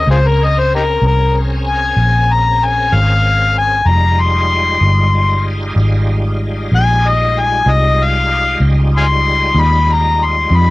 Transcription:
0, 0, Header, 1, 4, 480
1, 0, Start_track
1, 0, Key_signature, -4, "minor"
1, 0, Tempo, 631446
1, 59, Time_signature, 12, 3, 24, 8
1, 8136, End_track
2, 0, Start_track
2, 0, Title_t, "Harmonica"
2, 0, Program_c, 0, 22
2, 82, Note_on_c, 0, 65, 61
2, 82, Note_on_c, 0, 68, 61
2, 82, Note_on_c, 0, 72, 87
2, 132, Note_off_c, 0, 68, 0
2, 141, Note_off_c, 0, 65, 0
2, 209, Note_on_c, 0, 70, 82
2, 220, Note_off_c, 0, 72, 0
2, 335, Note_on_c, 0, 75, 91
2, 347, Note_off_c, 0, 70, 0
2, 447, Note_on_c, 0, 72, 85
2, 458, Note_off_c, 0, 75, 0
2, 545, Note_off_c, 0, 72, 0
2, 572, Note_on_c, 0, 63, 54
2, 572, Note_on_c, 0, 67, 54
2, 572, Note_on_c, 0, 70, 78
2, 626, Note_off_c, 0, 67, 0
2, 629, Note_off_c, 0, 63, 0
2, 789, Note_off_c, 0, 70, 0
2, 810, Note_on_c, 0, 70, 86
2, 1027, Note_off_c, 0, 70, 0
2, 1278, Note_on_c, 0, 80, 81
2, 1769, Note_on_c, 0, 82, 83
2, 1781, Note_off_c, 0, 80, 0
2, 2012, Note_on_c, 0, 80, 87
2, 2023, Note_off_c, 0, 82, 0
2, 2234, Note_on_c, 0, 77, 104
2, 2245, Note_off_c, 0, 80, 0
2, 2692, Note_off_c, 0, 77, 0
2, 2724, Note_on_c, 0, 80, 89
2, 2950, Note_on_c, 0, 82, 86
2, 2961, Note_off_c, 0, 80, 0
2, 3198, Note_on_c, 0, 84, 101
2, 3210, Note_off_c, 0, 82, 0
2, 4120, Note_off_c, 0, 84, 0
2, 5134, Note_on_c, 0, 80, 107
2, 5388, Note_on_c, 0, 75, 90
2, 5399, Note_off_c, 0, 80, 0
2, 5620, Note_on_c, 0, 80, 95
2, 5631, Note_off_c, 0, 75, 0
2, 5862, Note_on_c, 0, 75, 89
2, 5874, Note_off_c, 0, 80, 0
2, 6113, Note_on_c, 0, 77, 92
2, 6124, Note_off_c, 0, 75, 0
2, 6552, Note_off_c, 0, 77, 0
2, 6823, Note_on_c, 0, 77, 69
2, 6823, Note_on_c, 0, 80, 69
2, 6823, Note_on_c, 0, 84, 99
2, 6879, Note_off_c, 0, 77, 0
2, 6886, Note_off_c, 0, 80, 0
2, 7307, Note_on_c, 0, 83, 95
2, 7318, Note_off_c, 0, 84, 0
2, 7545, Note_on_c, 0, 82, 82
2, 7556, Note_off_c, 0, 83, 0
2, 7789, Note_on_c, 0, 84, 76
2, 7801, Note_off_c, 0, 82, 0
2, 8029, Note_on_c, 0, 83, 94
2, 8040, Note_off_c, 0, 84, 0
2, 8136, Note_off_c, 0, 83, 0
2, 8136, End_track
3, 0, Start_track
3, 0, Title_t, "Tonewheel organ"
3, 0, Program_c, 1, 16
3, 42, Note_on_c, 1, 61, 66
3, 43, Note_on_c, 1, 60, 71
3, 49, Note_on_c, 1, 68, 73
3, 49, Note_on_c, 1, 70, 66
3, 2901, Note_off_c, 1, 61, 0
3, 2902, Note_off_c, 1, 60, 0
3, 2905, Note_off_c, 1, 68, 0
3, 2905, Note_off_c, 1, 70, 0
3, 2952, Note_on_c, 1, 65, 70
3, 2953, Note_on_c, 1, 55, 73
3, 2955, Note_on_c, 1, 56, 70
3, 2955, Note_on_c, 1, 63, 68
3, 5796, Note_off_c, 1, 65, 0
3, 5797, Note_off_c, 1, 55, 0
3, 5798, Note_off_c, 1, 56, 0
3, 5798, Note_off_c, 1, 63, 0
3, 5810, Note_on_c, 1, 63, 76
3, 5812, Note_on_c, 1, 65, 65
3, 5820, Note_on_c, 1, 56, 69
3, 5821, Note_on_c, 1, 55, 70
3, 8136, Note_off_c, 1, 55, 0
3, 8136, Note_off_c, 1, 56, 0
3, 8136, Note_off_c, 1, 63, 0
3, 8136, Note_off_c, 1, 65, 0
3, 8136, End_track
4, 0, Start_track
4, 0, Title_t, "Fingered electric bass"
4, 0, Program_c, 2, 33
4, 55, Note_on_c, 2, 37, 77
4, 755, Note_off_c, 2, 37, 0
4, 772, Note_on_c, 2, 36, 80
4, 1473, Note_off_c, 2, 36, 0
4, 1493, Note_on_c, 2, 34, 78
4, 2194, Note_off_c, 2, 34, 0
4, 2223, Note_on_c, 2, 32, 88
4, 2919, Note_off_c, 2, 32, 0
4, 2931, Note_on_c, 2, 29, 75
4, 3633, Note_off_c, 2, 29, 0
4, 3657, Note_on_c, 2, 31, 80
4, 4356, Note_off_c, 2, 31, 0
4, 4377, Note_on_c, 2, 32, 88
4, 5076, Note_off_c, 2, 32, 0
4, 5106, Note_on_c, 2, 34, 80
4, 5801, Note_off_c, 2, 34, 0
4, 5822, Note_on_c, 2, 36, 82
4, 6519, Note_off_c, 2, 36, 0
4, 6538, Note_on_c, 2, 37, 84
4, 7237, Note_off_c, 2, 37, 0
4, 7256, Note_on_c, 2, 39, 87
4, 7956, Note_off_c, 2, 39, 0
4, 7986, Note_on_c, 2, 41, 82
4, 8136, Note_off_c, 2, 41, 0
4, 8136, End_track
0, 0, End_of_file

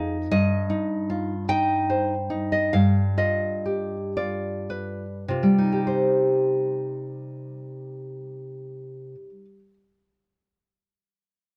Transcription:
0, 0, Header, 1, 2, 480
1, 0, Start_track
1, 0, Key_signature, -3, "minor"
1, 0, Tempo, 779221
1, 193, Time_signature, 12, 3, 24, 8
1, 1159, Tempo, 851064
1, 1639, Tempo, 934579
1, 2119, Tempo, 1034483
1, 2599, Tempo, 1171875
1, 3079, Tempo, 1048951
1, 5681, End_track
2, 0, Start_track
2, 0, Title_t, "Nylon-string guitar"
2, 0, Program_c, 0, 24
2, 0, Note_on_c, 0, 41, 60
2, 0, Note_on_c, 0, 63, 56
2, 0, Note_on_c, 0, 68, 56
2, 0, Note_on_c, 0, 77, 84
2, 100, Note_off_c, 0, 68, 0
2, 168, Note_off_c, 0, 77, 0
2, 170, Note_off_c, 0, 41, 0
2, 192, Note_off_c, 0, 63, 0
2, 193, Note_on_c, 0, 43, 66
2, 194, Note_on_c, 0, 75, 81
2, 430, Note_on_c, 0, 63, 52
2, 676, Note_on_c, 0, 65, 44
2, 814, Note_off_c, 0, 63, 0
2, 886, Note_off_c, 0, 75, 0
2, 915, Note_off_c, 0, 65, 0
2, 916, Note_on_c, 0, 63, 52
2, 918, Note_on_c, 0, 79, 85
2, 1168, Note_on_c, 0, 72, 51
2, 1302, Note_off_c, 0, 63, 0
2, 1395, Note_on_c, 0, 63, 52
2, 1495, Note_off_c, 0, 79, 0
2, 1520, Note_on_c, 0, 75, 62
2, 1544, Note_off_c, 0, 72, 0
2, 1617, Note_off_c, 0, 43, 0
2, 1637, Note_on_c, 0, 77, 68
2, 1639, Note_off_c, 0, 63, 0
2, 1641, Note_off_c, 0, 75, 0
2, 1641, Note_on_c, 0, 43, 55
2, 1863, Note_off_c, 0, 77, 0
2, 1866, Note_on_c, 0, 65, 49
2, 1868, Note_on_c, 0, 75, 68
2, 2113, Note_on_c, 0, 67, 42
2, 2254, Note_off_c, 0, 65, 0
2, 2329, Note_off_c, 0, 75, 0
2, 2348, Note_off_c, 0, 67, 0
2, 2351, Note_on_c, 0, 65, 42
2, 2351, Note_on_c, 0, 74, 59
2, 2597, Note_on_c, 0, 71, 42
2, 2742, Note_off_c, 0, 65, 0
2, 2836, Note_off_c, 0, 43, 0
2, 2837, Note_on_c, 0, 48, 53
2, 2846, Note_on_c, 0, 65, 41
2, 2897, Note_on_c, 0, 55, 42
2, 2960, Note_on_c, 0, 63, 39
2, 2989, Note_off_c, 0, 71, 0
2, 3018, Note_on_c, 0, 67, 45
2, 3063, Note_off_c, 0, 74, 0
2, 3077, Note_on_c, 0, 72, 46
2, 3081, Note_off_c, 0, 65, 0
2, 4577, Note_off_c, 0, 48, 0
2, 4644, Note_off_c, 0, 55, 0
2, 4715, Note_off_c, 0, 63, 0
2, 4779, Note_off_c, 0, 67, 0
2, 4845, Note_off_c, 0, 72, 0
2, 5681, End_track
0, 0, End_of_file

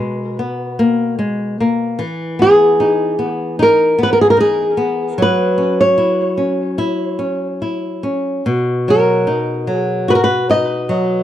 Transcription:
0, 0, Header, 1, 3, 480
1, 0, Start_track
1, 0, Key_signature, 5, "major"
1, 0, Tempo, 819672
1, 699, Tempo, 797872
1, 1177, Time_signature, 4, 2, 24, 8
1, 4059, Tempo, 819672
1, 6666, End_track
2, 0, Start_track
2, 0, Title_t, "Nylon-string guitar"
2, 0, Program_c, 0, 24
2, 0, Note_on_c, 0, 71, 73
2, 576, Note_off_c, 0, 71, 0
2, 1436, Note_on_c, 0, 68, 89
2, 2117, Note_off_c, 0, 68, 0
2, 2162, Note_on_c, 0, 70, 91
2, 2404, Note_off_c, 0, 70, 0
2, 2406, Note_on_c, 0, 71, 81
2, 2455, Note_off_c, 0, 71, 0
2, 2464, Note_on_c, 0, 70, 72
2, 2511, Note_off_c, 0, 70, 0
2, 2516, Note_on_c, 0, 68, 80
2, 2563, Note_off_c, 0, 68, 0
2, 2569, Note_on_c, 0, 70, 78
2, 2616, Note_off_c, 0, 70, 0
2, 2631, Note_on_c, 0, 68, 86
2, 3116, Note_off_c, 0, 68, 0
2, 3123, Note_on_c, 0, 71, 89
2, 3471, Note_off_c, 0, 71, 0
2, 3473, Note_on_c, 0, 73, 84
2, 4407, Note_off_c, 0, 73, 0
2, 5303, Note_on_c, 0, 70, 83
2, 5801, Note_off_c, 0, 70, 0
2, 5801, Note_on_c, 0, 68, 83
2, 6003, Note_off_c, 0, 68, 0
2, 6006, Note_on_c, 0, 71, 90
2, 6032, Note_off_c, 0, 71, 0
2, 6034, Note_on_c, 0, 70, 74
2, 6074, Note_off_c, 0, 70, 0
2, 6084, Note_on_c, 0, 71, 87
2, 6239, Note_off_c, 0, 71, 0
2, 6242, Note_on_c, 0, 75, 98
2, 6666, Note_off_c, 0, 75, 0
2, 6666, End_track
3, 0, Start_track
3, 0, Title_t, "Nylon-string guitar"
3, 0, Program_c, 1, 24
3, 0, Note_on_c, 1, 47, 55
3, 0, Note_on_c, 1, 56, 43
3, 212, Note_off_c, 1, 56, 0
3, 229, Note_on_c, 1, 59, 57
3, 461, Note_off_c, 1, 59, 0
3, 463, Note_on_c, 1, 58, 54
3, 691, Note_off_c, 1, 58, 0
3, 695, Note_on_c, 1, 56, 55
3, 928, Note_off_c, 1, 56, 0
3, 946, Note_on_c, 1, 58, 53
3, 1157, Note_off_c, 1, 47, 0
3, 1175, Note_off_c, 1, 58, 0
3, 1177, Note_on_c, 1, 52, 63
3, 1419, Note_on_c, 1, 59, 47
3, 1650, Note_off_c, 1, 59, 0
3, 1665, Note_on_c, 1, 63, 55
3, 1891, Note_off_c, 1, 63, 0
3, 1898, Note_on_c, 1, 59, 46
3, 2127, Note_off_c, 1, 59, 0
3, 2141, Note_on_c, 1, 63, 64
3, 2369, Note_off_c, 1, 63, 0
3, 2378, Note_on_c, 1, 59, 60
3, 2607, Note_off_c, 1, 59, 0
3, 2609, Note_on_c, 1, 63, 54
3, 2843, Note_off_c, 1, 63, 0
3, 2852, Note_on_c, 1, 59, 53
3, 3068, Note_off_c, 1, 52, 0
3, 3086, Note_off_c, 1, 59, 0
3, 3097, Note_on_c, 1, 54, 60
3, 3336, Note_on_c, 1, 61, 46
3, 3568, Note_off_c, 1, 61, 0
3, 3576, Note_on_c, 1, 64, 45
3, 3809, Note_off_c, 1, 64, 0
3, 3816, Note_on_c, 1, 61, 44
3, 4052, Note_off_c, 1, 61, 0
3, 4061, Note_on_c, 1, 64, 55
3, 4293, Note_off_c, 1, 64, 0
3, 4298, Note_on_c, 1, 61, 43
3, 4534, Note_off_c, 1, 61, 0
3, 4550, Note_on_c, 1, 64, 46
3, 4783, Note_off_c, 1, 64, 0
3, 4793, Note_on_c, 1, 61, 42
3, 5009, Note_off_c, 1, 54, 0
3, 5027, Note_off_c, 1, 61, 0
3, 5043, Note_on_c, 1, 47, 57
3, 5290, Note_on_c, 1, 54, 43
3, 5515, Note_off_c, 1, 54, 0
3, 5518, Note_on_c, 1, 63, 52
3, 5747, Note_off_c, 1, 63, 0
3, 5754, Note_on_c, 1, 54, 42
3, 5985, Note_off_c, 1, 54, 0
3, 5994, Note_on_c, 1, 66, 54
3, 6224, Note_off_c, 1, 66, 0
3, 6235, Note_on_c, 1, 63, 53
3, 6461, Note_off_c, 1, 63, 0
3, 6467, Note_on_c, 1, 54, 54
3, 6666, Note_off_c, 1, 47, 0
3, 6666, Note_off_c, 1, 54, 0
3, 6666, End_track
0, 0, End_of_file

